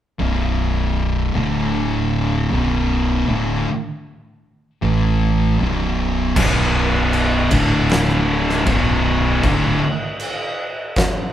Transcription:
0.19 B0 B1 F#2 B2
1.34 D1 D2 A2 D3
2.51 B0 B1 F#2 B2
3.28 D1 D2 A2 D3
4.82 A1 A2 E3 A3
5.59 B0 B1 F#2 B2
6.35 B0 B1 F#2 B2, kick, crash
7.13 crash
7.50 D1 D2 A2 D3, kick, crash
7.89 snare, crash
8.50 snare
8.66 B0 B1 F#2 B2, kick, crash
9.43 D1 D2 A2 D3, kick, crash
10.20 crash
10.96 kick, snare, crash

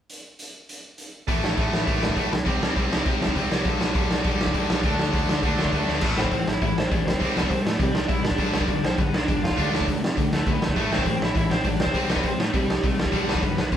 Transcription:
0.10 closed hi-hat
0.39 closed hi-hat
0.69 closed hi-hat
0.98 closed hi-hat
1.28 A1 A2 E3 A3, kick, open hi-hat
1.44 A1, snare
1.57 A1 A2 E3 A3, kick, open hi-hat
1.73 A1, snare
1.87 A1 A2 E3 A3, kick, open hi-hat
2.02 A1, snare
2.09 kick
2.16 B1 A2 E3 A3, kick, open hi-hat
2.32 C2, snare
2.45 C2 C3 G3 C4, kick, open hi-hat
2.62 C2, snare
2.76 C2 C3 G3 C4, kick, open hi-hat
2.92 C2, snare
3.05 C2 C3 G3 C4, kick, open hi-hat
3.22 C2, snare
3.28 kick
3.36 C2 C3 G3 C4, kick, open hi-hat
3.52 C2, snare
3.64 B1 G2 D3 G3, kick, open hi-hat
3.81 B1, snare
3.94 B1 G2 D3 G3, kick, open hi-hat
4.11 B1, snare
4.23 B1 G2 D3 G3, kick, open hi-hat
4.41 B1, snare
4.47 kick
4.54 B1 G2 D3 G3, kick, open hi-hat
4.70 B1, snare
4.83 D2 D3 A3 D4, kick, open hi-hat
4.99 D2, snare
5.12 D2 D3 A3 D4, kick, open hi-hat
5.29 D2, snare
5.43 D2 D3 A3 D4, kick, open hi-hat
5.58 D2 A3 A4, snare
5.65 kick
5.73 D2 D3 A3 B3 D4 B4, kick, open hi-hat
5.88 D2 A3 A4, snare
6.01 A1 A2 E3 A3, kick, crash
6.18 A1 C4 C5, snare
6.25 kick
6.31 A1 A2 E3 C4 C5, kick, open hi-hat
6.47 A1 E4 E5, snare
6.61 A1 A2 E3 E4 E5, kick, open hi-hat
6.78 A1 C5, snare
6.83 C4
6.91 A1 A2 E3 D4 D5, kick, open hi-hat
7.04 C2 C4 C5
7.08 snare
7.14 kick
7.20 C2 C3 G3 C4, kick, open hi-hat
7.36 C2 B3 B4, snare
7.43 kick
7.49 C2 C3 G3 C5, kick, open hi-hat
7.53 C4
7.62 A4
7.66 A2 A3, snare
7.78 C3 G3 G4, kick, open hi-hat
7.82 G3
7.91 C2 D4 D5, snare
8.08 C2 C3 G3 E4 E5, kick, open hi-hat
8.23 A1 D4 D5, snare
8.31 kick
8.38 B1 G2 D3 G3, kick, open hi-hat
8.54 B1 D4 D5, snare
8.61 kick
8.68 B1 G2 D3, kick, open hi-hat
8.84 B1 C5, snare
8.88 C4
8.98 B1 G2 D3 B3 B4, kick, open hi-hat
9.14 B1 D4 D5, snare
9.28 B1 G2 D3, kick, open hi-hat
9.43 F2 F4 F5, snare
9.51 kick
9.57 D2 D3 A3 D4, kick, open hi-hat
9.73 D2, snare
9.81 kick
9.87 D2 D3 A3, kick, open hi-hat
10.01 C3, snare
10.17 D3 A3, kick, open hi-hat
10.31 D2 A3 A4, snare
10.46 D2 D3 A3, kick, open hi-hat
10.50 B3 B4
10.61 D2 A3 A4, snare
10.69 kick
10.76 A1 A2 E3 A3, kick, open hi-hat
10.90 A1 C4 C5, snare
10.99 kick
11.06 A1 A2 E3 C4 C5, kick, open hi-hat
11.20 A1 E4 E5, snare
11.35 A1 A2 E3 E4 E5, kick, open hi-hat
11.50 A1 C4 C5, snare
11.64 B1 A2 E3 D4 D5, kick, open hi-hat
11.78 C2 C4 C5, snare
11.87 kick
11.94 C2 C3 G3 C4, kick, open hi-hat
12.09 C2 B3 B4, snare
12.17 kick
12.23 C2 C3 G3 C4 C5, kick, open hi-hat
12.39 A2 A3 A4, snare
12.53 C3 G3 G4, kick, open hi-hat
12.68 C2 G3 G4, snare
12.83 C2 C3 G3 A3 A4, kick, open hi-hat
12.99 C2 G3 G4, snare
13.06 kick
13.12 B1 G2 D3 G3, kick, open hi-hat
13.27 B1 B3 B4, snare
13.35 kick
13.42 B1 G2 D3, kick, open hi-hat
13.58 B1 B3 B4, snare
13.72 B1 G2 D3, kick, open hi-hat

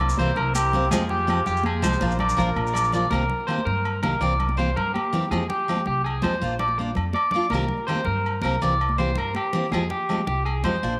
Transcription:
Already playing: C2 C4 E4 A#4 D5
0.01 low agogo
0.09 maracas
0.17 C2 E3 A#3 C4 G4 C5, high conga
0.36 C2 A#4, low conga, low agogo
0.55 G4, high conga, low agogo, maracas
0.73 A#3 C4 G4, low conga
0.82 low conga
0.91 F2 F3 G#3 C4 F4 G4 G#4, high conga, low conga, low agogo, maracas
1.01 low conga
1.09 G4, low conga
1.19 low conga
1.27 F3 C4 G4, muted steel-string acoustic guitar stroke, high conga, low conga, low agogo
1.46 F2 G4, low conga, maracas
1.57 maracas
1.64 G#4, high conga, low conga, low agogo
1.74 low conga
1.82 C2 F3 G#3 C4 G4 C5, low conga, low agogo, maracas
1.92 low conga, maracas
2.00 A#1 F3 A#3 D4 F4 A#4, high conga, low conga
2.11 low conga, maracas
2.19 D5, low conga, low agogo
2.29 maracas
2.37 A#1 F3 A#3 D4 F4 A#4, high conga, maracas
2.56 A#1, high conga, low agogo
2.67 maracas
2.74 D5, low conga, low agogo, maracas
2.84 maracas
2.92 F3 A#3 D4 F4 D5, low conga, maracas
3.10 C2 D#3 A#3 C4 G4 A#4, high conga, low agogo
3.30 low conga
3.40 low conga
3.47 D#3 A#3 C4 G4 C5, low conga, low agogo
3.58 high conga
3.65 G2 A#4, low conga
3.85 low agogo
4.02 C2 D#3 A#3 G4 A#4, high conga, low conga, low agogo
4.20 C2 E3 A#3 C4 G4 D5, low conga
4.40 low conga, low agogo
4.49 high conga
4.57 E3 A#3 C4 G4 C5
4.76 G2 A#4, low conga, low agogo
4.94 G4, high conga, low agogo
5.04 low conga
5.13 E3 A#3 C4 G4, low conga
5.31 F2 F3 G#3 C4 G4 G#4, high conga, low agogo
5.50 G4, low conga
5.59 low conga
5.68 F3 G#3 C4 G4, low conga, low agogo
5.76 high conga
5.86 C2 G4, low conga
6.04 G#4, low agogo
6.22 F2 F3 G#3 C4 G4 C5, high conga, low conga, low agogo
6.41 A#1 A#3 D4 F4, low conga
6.59 D5, low conga, low agogo
6.68 high conga
6.78 A#3 D4 F4, muted clean electric guitar stroke
6.95 F2, low conga, low agogo
7.13 D5, high conga, low agogo
7.23 low conga
7.31 A#3 D4 D5, low conga
7.36 F4
7.50 C2 D#3 A#3 A#4, high conga, low agogo
7.54 C4 G4
7.68 low conga
7.78 low conga
7.87 D#3 A#3 C4 G4 C5, low conga, low agogo
7.95 high conga
8.05 G2 A#4, low conga
8.26 low agogo
8.42 C2 A#3 C4 G4 A#4, high conga, low conga, low agogo
8.61 C2 E3 A#3 C4 G4 D5, low conga
8.81 low agogo
8.89 high conga
8.98 E3 A#3 C4 G4 C5
9.15 G2 A#4, low conga, low agogo
9.35 G4, high conga, low agogo
9.44 low conga
9.53 E3 A#3 C4 G4, low conga
9.72 F2 F3 G#3 G4 G#4, muted steel-string acoustic guitar stroke, high conga, low conga, low agogo
9.90 G4, low conga
10.08 F3 G#3 C4 G4, low conga, low agogo
10.18 high conga
10.27 C2 G4, low conga
10.45 G#4, low agogo
10.63 F2 F3 G#3 C4 G4 C5, high conga, low conga, low agogo
10.83 A#1 A#3 D4, muted steel-string acoustic guitar stroke, low conga
10.92 low conga

